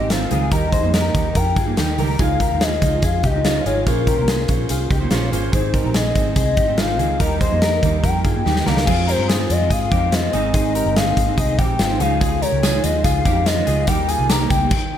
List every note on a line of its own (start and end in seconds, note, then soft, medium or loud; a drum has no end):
0.00 0.25 G#1 medium
0.00 0.09 G#3 soft
0.00 0.10 C4 soft
0.00 0.10 D#4 medium
0.00 0.10 G4 medium
0.00 0.11 D#5 medium
0.09 0.29 D#3 medium
0.09 0.30 G#3 medium
0.09 0.31 C4 medium
0.09 0.32 C4 medium
0.09 0.32 D#4 medium
0.09 0.31 F4 medium
0.09 0.52 F5 medium
0.09 snare medium
0.09 closed hi-hat medium
0.31 0.49 C#2 medium
0.31 0.50 D#3 medium
0.31 0.52 G#3 medium
0.31 0.52 C4 medium
0.31 0.52 D#4 medium
0.31 0.53 F4 medium
0.31 0.52 G#4 medium
0.31 closed hi-hat medium
0.51 0.79 D#2 medium
0.51 0.83 D#3 medium
0.51 0.83 G3 medium
0.51 0.83 A#3 medium
0.51 0.81 D#4 medium
0.51 0.73 G4 medium
0.51 0.73 A#4 medium
0.51 0.91 D#5 medium
0.51 kick loud
0.51 closed hi-hat medium
0.72 0.94 G#4 medium
0.72 0.93 C5 medium
0.72 kick medium
0.72 closed hi-hat medium
0.82 1.10 F2 medium
0.82 1.14 G3 soft
0.82 1.15 A#3 soft
0.82 1.14 D#4 soft
0.94 1.34 G4 medium
0.94 1.33 A#4 medium
0.94 1.38 D#5 medium
0.94 snare loud
0.94 closed hi-hat medium
1.14 1.33 D#2 medium
1.14 1.76 D#3 medium
1.14 1.67 G3 medium
1.14 1.66 A#3 medium
1.14 1.66 D#4 medium
1.14 kick medium
1.14 closed hi-hat medium
1.35 1.53 F2 medium
1.35 1.57 G4 medium
1.35 1.57 A#4 medium
1.35 1.99 G5 loud
1.35 kick medium
1.35 closed hi-hat medium
1.56 1.74 G2 medium
1.56 1.78 F4 medium
1.56 1.78 G#4 medium
1.56 kick medium
1.56 closed hi-hat medium
1.66 1.76 G3 soft
1.66 1.77 A#3 soft
1.66 1.77 D#4 soft
1.76 1.95 D#2 medium
1.76 1.96 D#3 medium
1.76 1.97 G3 medium
1.76 1.98 A#3 medium
1.76 1.99 D#4 medium
1.76 1.99 G4 medium
1.76 snare medium
1.76 closed hi-hat medium
1.98 2.16 C#2 medium
1.98 2.18 D#3 medium
1.98 2.19 G3 medium
1.98 2.19 A#3 medium
1.98 2.18 D#4 medium
1.98 2.19 G4 medium
1.98 2.20 A#4 medium
1.98 open hi-hat medium
2.18 2.46 C#2 loud
2.18 2.50 C#3 medium
2.18 2.50 F3 medium
2.18 2.51 G#3 medium
2.18 2.51 D#4 medium
2.18 2.49 F4 medium
2.18 2.41 F4 medium
2.18 2.40 G#4 medium
2.18 2.64 F5 loud
2.18 kick medium
2.18 closed hi-hat medium
2.40 2.62 G4 medium
2.40 2.61 A#4 medium
2.40 kick medium
2.40 closed hi-hat medium
2.51 2.77 D#2 medium
2.51 2.81 G#3 soft
2.51 2.82 D#4 soft
2.51 2.82 F4 soft
2.61 3.01 F4 medium
2.61 3.01 G#4 medium
2.61 3.05 D#5 medium
2.61 snare loud
2.61 closed hi-hat medium
2.82 3.00 C#2 medium
2.82 3.39 F3 medium
2.82 3.34 G#3 medium
2.82 3.35 D#4 medium
2.82 3.34 F4 medium
2.82 kick medium
2.82 closed hi-hat medium
3.02 3.25 F2 medium
3.02 3.24 F4 medium
3.02 3.24 G#4 medium
3.02 3.27 F5 loud
3.02 kick medium
3.02 closed hi-hat medium
3.23 3.59 C#2 medium
3.23 3.45 D#4 medium
3.23 3.45 G4 medium
3.23 3.66 D#5 medium
3.23 kick medium
3.23 closed hi-hat medium
3.34 3.44 G#3 soft
3.34 3.45 D#4 soft
3.34 3.45 F4 soft
3.44 3.63 F3 medium
3.44 3.64 G#3 medium
3.44 3.66 C#4 medium
3.44 3.65 D#4 medium
3.44 3.65 F4 medium
3.44 3.66 F4 medium
3.44 snare medium
3.44 closed hi-hat medium
3.64 3.83 G#1 medium
3.64 3.85 F3 medium
3.64 3.86 G#3 medium
3.64 3.87 D#4 medium
3.64 3.87 F4 medium
3.64 3.86 F4 medium
3.64 3.86 G#4 medium
3.64 3.86 C#5 medium
3.64 closed hi-hat medium
3.86 4.13 A#1 loud
3.86 4.18 A#2 medium
3.86 4.18 F3 medium
3.86 4.18 A#3 medium
3.86 4.18 C#4 medium
3.86 4.17 F4 medium
3.86 4.08 F4 medium
3.86 4.08 G#4 loud
3.86 4.67 A#4 medium
3.86 4.16 C5 medium
3.86 kick loud
3.86 closed hi-hat medium
4.07 4.28 G4 medium
4.07 4.28 A#4 medium
4.07 kick medium
4.07 closed hi-hat medium
4.17 4.44 C2 medium
4.17 4.47 A#3 soft
4.17 4.48 C#4 soft
4.17 4.49 F4 soft
4.17 4.49 C5 soft
4.28 4.68 F4 medium
4.28 4.68 G#4 medium
4.28 snare loud
4.28 closed hi-hat medium
4.48 4.67 A#1 medium
4.48 5.01 A#3 medium
4.48 5.01 C#4 medium
4.48 5.00 F4 medium
4.48 4.99 C5 medium
4.48 kick medium
4.48 closed hi-hat medium
4.69 4.88 C2 medium
4.69 4.91 F4 medium
4.69 4.90 G#4 medium
4.69 closed hi-hat medium
4.90 5.08 C#2 medium
4.90 5.11 D#4 medium
4.90 5.11 G4 medium
4.90 kick medium
4.90 closed hi-hat medium
5.00 5.09 A#3 soft
5.00 5.10 C#4 soft
5.00 5.11 F4 medium
5.00 5.11 C5 medium
5.10 5.29 A#1 medium
5.10 5.30 A#3 medium
5.10 5.31 C#4 medium
5.10 5.32 C#4 medium
5.10 5.31 F4 medium
5.10 5.32 F4 medium
5.10 5.33 C5 medium
5.10 snare medium
5.10 closed hi-hat medium
5.32 5.50 G#1 medium
5.32 5.53 A#3 medium
5.32 5.53 C#4 medium
5.32 5.53 F4 medium
5.32 5.54 F4 medium
5.32 5.51 G#4 medium
5.32 5.54 C5 medium
5.32 closed hi-hat medium
5.52 5.80 G#1 medium
5.52 5.85 G#2 medium
5.52 5.85 D#3 medium
5.52 5.85 G#3 medium
5.52 5.84 C4 medium
5.52 5.74 D#4 medium
5.52 5.83 D#4 medium
5.52 5.74 G#4 medium
5.52 5.92 C5 medium
5.52 kick loud
5.52 closed hi-hat medium
5.74 5.94 G4 medium
5.74 5.95 A#4 medium
5.74 kick medium
5.74 closed hi-hat medium
5.84 6.11 A#1 medium
5.84 6.15 G#3 soft
5.84 6.16 C4 soft
5.84 6.16 D#4 medium
5.94 6.34 D#4 medium
5.94 6.34 G#4 medium
5.94 6.34 D#5 medium
5.94 snare loud
5.94 closed hi-hat medium
6.15 6.34 G#1 medium
6.15 6.77 D#3 medium
6.15 6.69 G#3 medium
6.15 6.68 C4 medium
6.15 6.67 D#4 medium
6.15 kick medium
6.15 closed hi-hat medium
6.36 6.54 C2 medium
6.36 6.56 D#4 medium
6.36 6.56 G#4 medium
6.36 6.81 D#5 loud
6.36 kick medium
6.36 closed hi-hat medium
6.57 7.00 G#1 medium
6.57 6.77 D#4 medium
6.57 6.78 G4 medium
6.57 kick medium
6.57 closed hi-hat medium
6.68 6.78 G#3 soft
6.68 6.78 C4 soft
6.68 6.78 D#4 medium
6.78 6.97 D#3 medium
6.78 6.98 G#3 medium
6.78 6.99 C4 medium
6.78 6.99 D#4 medium
6.78 6.98 F4 medium
6.78 7.21 F5 medium
6.78 snare loud
6.78 closed hi-hat medium
6.98 7.17 C#2 medium
6.98 7.18 D#3 medium
6.98 7.20 G#3 medium
6.98 7.20 C4 medium
6.98 7.20 D#4 medium
6.98 7.21 F4 medium
6.98 7.20 G#4 medium
6.98 closed hi-hat medium
7.20 7.47 D#2 loud
7.20 7.51 D#3 medium
7.20 7.52 G3 medium
7.20 7.51 A#3 medium
7.20 7.49 D#4 medium
7.20 7.41 G4 medium
7.20 7.41 A#4 loud
7.20 8.06 D#5 loud
7.20 kick medium
7.20 closed hi-hat medium
7.41 7.63 G#4 medium
7.41 7.62 C5 medium
7.41 kick medium
7.41 closed hi-hat medium
7.51 7.78 F2 medium
7.51 7.82 G3 soft
7.51 7.83 A#3 soft
7.51 7.83 D#4 soft
7.62 8.02 G4 medium
7.62 8.02 A#4 medium
7.62 snare loud
7.62 closed hi-hat medium
7.82 8.01 D#2 medium
7.82 8.35 D#3 medium
7.82 8.36 G3 medium
7.82 8.35 A#3 medium
7.82 8.34 D#4 medium
7.82 kick medium
7.82 closed hi-hat medium
8.03 8.22 F2 medium
8.03 8.24 G4 medium
8.03 8.25 A#4 medium
8.03 8.25 G5 loud
8.03 kick medium
8.03 closed hi-hat medium
8.24 8.43 G2 medium
8.24 8.46 F4 medium
8.24 8.44 G#4 medium
8.24 8.68 G5 medium
8.24 kick medium
8.24 closed hi-hat medium
8.35 8.45 G3 soft
8.35 8.45 A#3 soft
8.35 8.46 D#4 soft
8.45 8.64 D#2 medium
8.45 8.64 D#3 medium
8.45 8.65 G3 medium
8.45 8.66 A#3 medium
8.45 8.67 D#4 medium
8.45 8.66 G4 medium
8.45 snare soft
8.56 snare medium
8.65 8.85 C#2 medium
8.65 8.87 D#3 medium
8.65 8.87 G3 medium
8.65 8.88 A#3 medium
8.65 8.88 D#4 medium
8.65 8.87 G4 medium
8.65 8.86 A#4 medium
8.65 9.10 F5 loud
8.65 snare medium
8.77 snare medium
8.86 9.14 F2 medium
8.86 9.40 F3 medium
8.86 9.41 G#3 medium
8.86 9.39 C4 medium
8.86 9.08 F4 medium
8.86 9.37 F4 medium
8.86 9.07 G#4 loud
8.86 kick loud
8.86 crash medium
9.07 9.29 G4 medium
9.07 9.28 A#4 medium
9.07 9.53 C5 medium
9.07 closed hi-hat medium
9.18 9.45 G2 medium
9.28 9.69 F4 medium
9.28 9.68 G#4 medium
9.28 snare loud
9.28 closed hi-hat medium
9.38 9.60 G#3 soft
9.38 9.59 C4 soft
9.38 9.58 F4 medium
9.50 9.68 F2 medium
9.50 9.73 D#5 medium
9.50 closed hi-hat medium
9.59 9.91 G#3 soft
9.59 9.92 C4 soft
9.59 9.91 F4 medium
9.70 9.89 G#2 medium
9.70 9.92 F4 medium
9.70 9.91 G#4 medium
9.70 10.15 F5 medium
9.70 kick medium
9.70 closed hi-hat medium
9.91 10.27 F2 medium
9.91 10.23 F3 medium
9.91 10.23 G#3 medium
9.91 10.22 C4 medium
9.91 10.12 D#4 medium
9.91 10.21 F4 medium
9.91 10.13 G4 medium
9.91 kick medium
9.91 closed hi-hat medium
10.12 10.34 C4 medium
10.12 10.33 F4 medium
10.12 10.53 D#5 medium
10.12 snare medium
10.12 closed hi-hat medium
10.22 10.33 G#3 soft
10.22 10.33 C4 soft
10.22 10.33 F4 medium
10.33 10.51 G#1 medium
10.33 11.06 G#2 medium
10.33 11.58 D#3 medium
10.33 11.08 G#3 medium
10.33 11.06 C4 medium
10.33 10.54 D#4 medium
10.33 11.05 D#4 medium
10.33 10.53 G#4 medium
10.33 closed hi-hat medium
10.54 10.81 G#1 loud
10.54 10.76 D#4 medium
10.54 10.75 G#4 loud
10.54 10.98 D#5 medium
10.54 kick loud
10.54 closed hi-hat medium
10.75 10.97 G4 medium
10.75 10.96 A#4 medium
10.75 closed hi-hat medium
10.86 11.12 G1 medium
10.96 11.36 D#4 medium
10.96 11.36 G#4 medium
10.96 11.39 F5 medium
10.96 snare loud
10.96 closed hi-hat medium
11.06 11.28 G#3 soft
11.06 11.27 C4 soft
11.06 11.25 D#4 medium
11.17 11.35 G#1 medium
11.17 kick medium
11.17 closed hi-hat medium
11.26 11.59 G#3 soft
11.26 11.59 C4 soft
11.26 11.58 D#4 medium
11.38 11.59 C2 medium
11.38 11.58 D#4 medium
11.38 11.58 G#4 medium
11.38 11.59 D#5 loud
11.38 kick medium
11.38 closed hi-hat medium
11.58 11.77 A#1 medium
11.58 11.90 D#3 medium
11.58 11.91 G#3 medium
11.58 11.90 C4 medium
11.58 11.79 D#4 medium
11.58 11.88 D#4 medium
11.58 11.80 G4 medium
11.58 12.02 G5 medium
11.58 kick medium
11.58 closed hi-hat medium
11.79 11.97 G#1 medium
11.79 12.01 C4 medium
11.79 12.00 F4 medium
11.79 snare loud
11.79 closed hi-hat medium
11.90 12.00 G#3 soft
11.90 12.01 C4 medium
11.90 12.00 D#4 medium
12.00 12.45 C#2 medium
12.00 12.73 C#3 medium
12.00 12.74 F3 medium
12.00 12.74 G#3 medium
12.00 12.73 D#4 medium
12.00 12.20 F4 medium
12.00 12.20 G#4 medium
12.00 12.43 F5 loud
12.00 closed hi-hat medium
12.21 12.42 F4 medium
12.21 12.42 G#4 loud
12.21 kick loud
12.21 closed hi-hat medium
12.21 tambourine soft
12.41 12.63 G4 medium
12.41 12.62 A#4 medium
12.41 12.85 C#5 loud
12.41 closed hi-hat medium
12.41 tambourine medium
12.52 12.79 C#2 medium
12.63 13.03 F4 medium
12.63 13.02 G#4 medium
12.63 snare loud
12.63 closed hi-hat medium
12.63 tambourine medium
12.74 12.96 F3 soft
12.74 12.95 G#3 soft
12.74 12.94 D#4 medium
12.83 13.02 D#2 medium
12.83 13.03 D#5 medium
12.83 closed hi-hat medium
12.83 tambourine soft
12.95 13.25 F3 soft
12.95 13.26 G#3 soft
12.95 13.26 D#4 medium
13.04 13.22 C#2 medium
13.04 13.26 F4 medium
13.04 13.25 G#4 medium
13.04 13.47 F5 loud
13.04 kick medium
13.04 closed hi-hat medium
13.04 tambourine soft
13.25 13.61 F2 medium
13.25 13.57 C#3 medium
13.25 13.57 F3 medium
13.25 13.57 G#3 medium
13.25 13.45 D#4 medium
13.25 13.56 D#4 medium
13.25 13.46 G4 medium
13.25 kick medium
13.25 closed hi-hat medium
13.25 tambourine soft
13.45 13.67 C#4 medium
13.45 13.67 F4 medium
13.45 13.89 D#5 medium
13.45 snare loud
13.45 closed hi-hat medium
13.45 tambourine medium
13.57 13.88 F3 soft
13.57 13.88 G#3 medium
13.57 13.88 D#4 soft
13.67 13.85 C#2 medium
13.67 13.88 F4 medium
13.67 13.87 G#4 medium
13.67 closed hi-hat medium
13.67 tambourine soft
13.87 14.14 D#2 loud
13.87 14.98 D#3 medium
13.87 14.40 G3 medium
13.87 14.39 A#3 medium
13.87 14.09 D#4 medium
13.87 14.39 D#4 medium
13.87 14.08 G4 loud
13.87 14.10 G5 loud
13.87 kick loud
13.87 closed hi-hat loud
13.87 tambourine soft
14.08 14.30 F4 medium
14.08 14.29 G#4 medium
14.08 14.31 G#5 loud
14.08 closed hi-hat medium
14.08 tambourine medium
14.19 14.46 C2 medium
14.29 14.69 D#4 medium
14.29 14.69 G4 medium
14.29 14.50 A#5 loud
14.29 snare loud
14.29 closed hi-hat medium
14.29 tambourine medium
14.39 14.61 G3 soft
14.39 14.60 A#3 soft
14.39 14.59 D#4 medium
14.50 14.68 C#2 medium
14.50 14.70 G5 loud
14.50 kick medium
14.50 closed hi-hat medium
14.50 tambourine soft
14.60 14.72 G3 soft
14.60 14.72 A#3 medium
14.60 14.71 D#4 medium
14.71 14.98 G5 loud
14.71 kick loud
14.71 crash medium